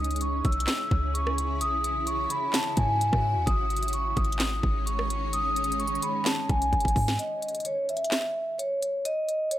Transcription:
Already playing: 808-style bass C#2, ambient pad C#3 C#4 E4 G#4, vibraphone D#6
0.04 closed hi-hat
0.11 closed hi-hat
0.16 closed hi-hat
0.21 vibraphone C#6, closed hi-hat
0.45 808-style bass B1, vibraphone E6, kick, closed hi-hat
0.52 closed hi-hat
0.60 closed hi-hat
0.67 snare, clap, closed hi-hat
0.91 808-style bass C#2, kick
1.14 vibraphone C#6, closed hi-hat
1.27 cross-stick
1.38 closed hi-hat
1.61 808-style bass B1, ambient pad F#4, vibraphone D#6, closed hi-hat
1.84 closed hi-hat
2.07 vibraphone C#6, closed hi-hat
2.30 vibraphone B5, closed hi-hat
2.53 vibraphone A5, snare, clap, closed hi-hat
2.77 808-style bass G#2, vibraphone G#5, kick, closed hi-hat
3.01 closed hi-hat
3.13 808-style bass G#2, kick, cross-stick
3.36 808-style bass E2
3.46 808-style bass G#1, ambient pad D#3 G#3 C#4, vibraphone D#6, kick, closed hi-hat
3.70 closed hi-hat
3.76 closed hi-hat
3.83 closed hi-hat
3.88 closed hi-hat
3.93 vibraphone C#6, closed hi-hat
4.16 808-style bass G#1, vibraphone D#6, kick, closed hi-hat
4.25 closed hi-hat
4.32 closed hi-hat
4.39 snare, clap, closed hi-hat
4.63 808-style bass G#1, kick
4.86 vibraphone C#6, closed hi-hat
4.99 cross-stick
5.10 closed hi-hat
5.33 vibraphone D#6, closed hi-hat
5.56 closed hi-hat
5.64 closed hi-hat
5.72 closed hi-hat
5.79 vibraphone C#6, closed hi-hat
5.87 closed hi-hat
5.95 closed hi-hat
6.02 vibraphone B5, closed hi-hat
6.25 vibraphone A5, snare, clap, closed hi-hat
6.49 808-style bass B1, vibraphone G#5, kick, closed hi-hat
6.62 closed hi-hat
6.73 808-style bass G#1, kick, closed hi-hat
6.80 closed hi-hat
6.85 808-style bass G#1, kick, closed hi-hat
6.96 808-style bass G#2, kick, open hi-hat
7.08 snare
7.19 vibraphone D#5, closed hi-hat
7.42 closed hi-hat
7.49 closed hi-hat
7.55 closed hi-hat
7.60 closed hi-hat
7.65 vibraphone C#5, closed hi-hat
7.89 vibraphone E5, closed hi-hat
7.97 closed hi-hat
8.04 closed hi-hat
8.11 snare, clap, closed hi-hat
8.58 vibraphone C#5, closed hi-hat
8.82 closed hi-hat
9.05 vibraphone D#5, closed hi-hat
9.29 closed hi-hat
9.51 vibraphone C#5, closed hi-hat

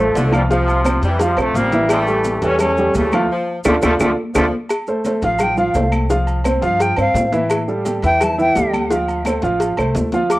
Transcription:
Already playing: upright bass A1, trombone section F3 A3, grand piano A3 A4 C5
0.15 upright bass C2, saxophone section D3, cowbell, high conga, low timbale, low agogo, maracas
0.32 trombone section E3 G3, grand piano F3 F4 F5, high conga, low agogo, claves, maracas
0.49 trombone section C3 F3, grand piano F3 F4 F5, saxophone section F3, cowbell, high conga, maracas
0.67 high conga, low agogo, maracas
0.85 grand piano C4 C5, cowbell, high conga, low agogo, claves, maracas
1.02 upright bass F2, trombone section C3 E3, saxophone section G3, cowbell, high conga, maracas
1.19 trombone section C3 F3, grand piano F3 F4 F5, cowbell, high conga, low agogo, maracas
1.37 upright bass A#1, trombone section F3 A3, grand piano C4 C5, high conga, low agogo, claves, maracas
1.54 upright bass A1, saxophone section F3, trombone section G3 A#3, cowbell, high conga, maracas
1.72 grand piano E3 E4 E5, cowbell, high conga, maracas
1.89 trombone section E3 A3, saxophone section G3, cowbell, high conga, low agogo, claves, maracas
2.07 grand piano G3 G4 A4, maracas
2.24 cowbell, high conga, low agogo, maracas
2.42 upright bass E2, saxophone section E3, grand piano G3 G4 A4, trombone section A3 C#4, cowbell, high conga, low agogo, maracas
2.59 trombone section A3 C#4, cowbell, high conga, low conga, low agogo, claves, maracas
2.77 grand piano G3 G4 A4, high conga, low conga, maracas
2.94 upright bass D2, saxophone section C#3, trombone section E3 A3, cowbell, high conga, low agogo, maracas
3.12 grand piano F3 F4 F5, high conga, low agogo, claves, maracas
3.30 saxophone section F3
3.64 upright bass D2, trombone section D3 F3 A3, grand piano D4 F4 A4, cowbell, high conga, high timbale, claves, maracas
3.82 upright bass D2, trombone section D3 F3 A3, saxophone section G3, grand piano D4 F4 A4, cowbell, high conga, high timbale, claves, maracas
4.00 upright bass D2, trombone section D3 F3 A3, grand piano D4 F4 A4, cowbell, high conga, high timbale, claves, maracas
4.34 upright bass D2, trombone section D3 F3 A3, saxophone section F3, grand piano D4 F4 A4, cowbell, high conga, high timbale, claves, maracas
4.69 cowbell, high conga, low agogo, claves, maracas
4.87 grand piano A3 A4 C5, high conga, maracas
5.05 grand piano A3 A4 C5, cowbell, high conga, low agogo, maracas
5.22 upright bass A1, grand piano F3 F4 F5, flute F5, cowbell, high conga, low agogo, maracas
5.39 cowbell, high conga, low conga, low agogo, claves, maracas
5.43 flute G5
5.57 grand piano F3 F4 F5, flute F5, high conga, low conga, maracas
5.74 upright bass C2, grand piano A3 A4 C5, cowbell, high conga, low timbale, low agogo, maracas
5.92 high conga, low agogo, claves, maracas
6.10 grand piano F3 F4 F5, cowbell, maracas
6.27 high conga, low agogo, maracas
6.44 grand piano C4 C5, cowbell, high conga, low agogo, claves, maracas
6.62 upright bass G2, grand piano F3 F4 F5, flute F5, cowbell, high conga, maracas
6.80 flute G5, cowbell, high conga, low agogo, maracas
6.97 upright bass G2, grand piano C4 C5, flute F5, high conga, low agogo, claves, maracas
7.14 upright bass A2, cowbell, high conga, low timbale, maracas
7.32 grand piano E3 E4 E5, cowbell, high conga, maracas
7.50 cowbell, high conga, low agogo, claves, maracas
7.68 grand piano G3 G4 A4, high conga, maracas
7.85 grand piano G3 G4 A4, cowbell, high conga, low agogo, maracas
8.02 upright bass E2, grand piano E3 E4 E5, flute G5, cowbell, high conga, low agogo, maracas
8.20 flute A5, cowbell, high conga, low conga, low agogo, claves, maracas
8.38 grand piano E3 E4 E5, flute G5, high conga, low conga, maracas
8.55 upright bass D2, grand piano G3 G4 A4, cowbell, high conga, low agogo, maracas
8.73 high conga, low agogo, claves, maracas
8.90 grand piano F3 F4 F5, cowbell, high conga, maracas
9.08 high conga, low agogo, maracas
9.25 grand piano A3 A4 C5, cowbell, high conga, low agogo, claves, maracas
9.42 upright bass A1, grand piano F3 F4 F5, cowbell, high conga, maracas
9.60 cowbell, high conga, low agogo, maracas
9.77 upright bass C2, grand piano A3 A4 C5, high conga, low agogo, claves, maracas
9.95 upright bass D2, cowbell, high conga, low timbale, maracas
10.12 grand piano F3 F4 F5, cowbell, high conga, maracas
10.30 flute D6, cowbell, high conga, low agogo, claves, maracas

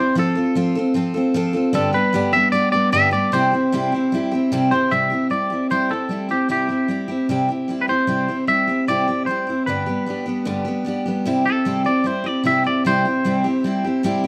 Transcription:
Already playing: steel-string acoustic guitar E4 G4, clean electric guitar C5
0.00 steel-string acoustic guitar C4
0.15 steel-string acoustic guitar F3 C4 F4 A4, clean electric guitar A4
0.35 steel-string acoustic guitar C4 F4 A4
0.55 steel-string acoustic guitar F3 C4 F4 A4
0.75 steel-string acoustic guitar C4 F4 A4
0.94 steel-string acoustic guitar F3 C4 F4 A4
1.14 steel-string acoustic guitar C4 F4 A4
1.34 steel-string acoustic guitar F3 C4 F4 A4
1.53 steel-string acoustic guitar C4 F4 A4
1.73 steel-string acoustic guitar G2 D3 G3 B3 D4 G4, clean electric guitar A4
1.93 steel-string acoustic guitar G3 B3 D4 G4, clean electric guitar B4
2.13 steel-string acoustic guitar G2 D3 G3 B3 D4 G4
2.33 steel-string acoustic guitar G3 B3 D4 G4, clean electric guitar E5
2.52 steel-string acoustic guitar G3 B3 D4 G4, clean electric guitar D5
2.72 steel-string acoustic guitar G3 B3 D4 G4, clean electric guitar D5
2.92 steel-string acoustic guitar G2 D3 G3 B3 D4 G4, clean electric guitar E5
3.11 steel-string acoustic guitar G3 B3 D4 G4, clean electric guitar D5
3.32 steel-string acoustic guitar C3 G3 C4 E4 G4, clean electric guitar C5
3.52 steel-string acoustic guitar C4 E4 G4
3.72 steel-string acoustic guitar C3 G3 C4 E4 G4
3.92 steel-string acoustic guitar C4 E4 G4
4.12 steel-string acoustic guitar G3 C4 E4 G4
4.32 steel-string acoustic guitar C4 E4 G4
4.52 steel-string acoustic guitar C3 G3 C4 E4 G4
4.71 steel-string acoustic guitar C4 E4 G4, clean electric guitar C5
4.91 steel-string acoustic guitar C3 G3 C4 E4 G4, clean electric guitar E5
5.10 steel-string acoustic guitar C4 E4 G4
5.30 steel-string acoustic guitar G3 C4 E4 G4, clean electric guitar D5
5.50 steel-string acoustic guitar C4 E4 G4
5.70 steel-string acoustic guitar C3 G3 C4 E4 G4, clean electric guitar C5
5.89 steel-string acoustic guitar C4 E4 G4, clean electric guitar A4
6.09 steel-string acoustic guitar G3 C4 E4 G4
6.29 steel-string acoustic guitar C4 E4 G4, clean electric guitar G4
6.49 steel-string acoustic guitar C3 G3 C4 E4 G4, clean electric guitar G4
6.68 steel-string acoustic guitar C4 E4 G4
6.88 steel-string acoustic guitar G3 C4 E4 G4
7.08 steel-string acoustic guitar C4 E4 G4
7.29 steel-string acoustic guitar C3 G3 C4 E4 G4
7.49 steel-string acoustic guitar C4 E4 G4
7.68 steel-string acoustic guitar G3 C4 E4 G4
7.81 clean electric guitar B4
7.88 steel-string acoustic guitar C4 E4 G4, clean electric guitar C5
8.07 steel-string acoustic guitar C3 G3 C4 E4 G4
8.28 steel-string acoustic guitar C4 E4 G4
8.47 steel-string acoustic guitar G3 C4 E4 G4, clean electric guitar E5
8.67 steel-string acoustic guitar C4 E4 G4
8.88 steel-string acoustic guitar C3 G3 C4 E4 G4, clean electric guitar D5
9.08 steel-string acoustic guitar C4 E4 G4
9.26 steel-string acoustic guitar G3 C4 E4, clean electric guitar C5
9.31 steel-string acoustic guitar G4
9.47 steel-string acoustic guitar C4 E4 G4
9.66 steel-string acoustic guitar G2 D3 G3 B3 D4 G4, clean electric guitar B4
9.86 steel-string acoustic guitar G3 B3 D4 G4
10.06 steel-string acoustic guitar G3 B3 D4 G4
10.26 steel-string acoustic guitar G3 B3 D4 G4
10.45 steel-string acoustic guitar G2 D3 G3 B3 D4 G4
10.65 steel-string acoustic guitar G3 B3 D4 G4
10.85 steel-string acoustic guitar G3 B3 D4 G4
11.06 steel-string acoustic guitar G3 B3 D4 G4
11.25 steel-string acoustic guitar C3 G3 C4 E4 G4
11.45 steel-string acoustic guitar C4 E4 G4, clean electric guitar A4
11.65 steel-string acoustic guitar C3 G3 C4 E4 G4
11.85 steel-string acoustic guitar C4 E4 G4, clean electric guitar D5
12.04 steel-string acoustic guitar G3 C4 E4 G4, clean electric guitar C5
12.24 steel-string acoustic guitar C4 E4 G4, clean electric guitar D5
12.44 steel-string acoustic guitar C3 G3 C4 E4 G4, clean electric guitar E5
12.64 steel-string acoustic guitar C4 E4 G4, clean electric guitar D5
12.85 steel-string acoustic guitar C3 G3 C4 E4 G4, clean electric guitar C5
13.05 steel-string acoustic guitar C4 E4 G4
13.24 steel-string acoustic guitar C3 G3 C4 E4 G4
13.44 steel-string acoustic guitar C4 E4 G4
13.64 steel-string acoustic guitar G3 C4 E4 G4
13.84 steel-string acoustic guitar C4 E4 G4
14.03 steel-string acoustic guitar C3 G3 C4 E4 G4
14.24 steel-string acoustic guitar G4

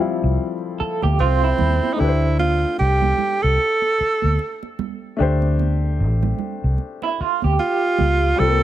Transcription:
Already playing: grand piano A4 F5
0.00 grand piano F3 G3 C4 E4
0.23 fingered electric bass C2
0.80 clean electric guitar A4, muted fingered electric bass stroke
1.02 fingered electric bass D2, clean electric guitar G4, high conga
1.20 fingered electric bass C2, tenor saxophone C4, clean electric guitar F4
1.43 clean electric guitar E4, muted conga
1.58 fingered electric bass D#2, high conga, low conga
1.83 high conga
1.93 grand piano A3, tenor saxophone D#4
1.98 fingered electric bass D2, grand piano D4 G4 B4, tenor saxophone E4, muted conga
2.08 grand piano C5
2.22 muted conga
2.39 tenor saxophone F4, high conga
2.78 fingered electric bass C2, tenor saxophone G4, muted conga
3.02 muted conga, high conga, low conga
3.18 low conga
3.43 fingered electric bass C2, tenor saxophone A4
3.58 muted conga
3.82 muted conga
4.00 muted fingered electric bass stroke
4.22 fingered electric bass D2, high conga
4.39 muted conga
4.63 muted conga
4.79 high conga, low conga
5.17 fingered electric bass D2, grand piano A3 D4 G4
5.22 grand piano C5
5.42 muted conga
5.59 high conga
6.00 fingered electric bass A1
6.23 high conga, low conga
6.39 low conga
6.64 fingered electric bass C2
6.78 muted conga
7.02 clean electric guitar E4, muted conga
7.20 clean electric guitar F4, muted fingered electric bass stroke
7.42 fingered electric bass D2, clean electric guitar G4, high conga
7.59 tenor saxophone F4, muted conga
7.98 fingered electric bass C#2, high conga, low conga
8.36 fingered electric bass C2, grand piano G3 C4 F4, tenor saxophone A4, muted conga
8.41 grand piano A4
8.48 grand piano A#3

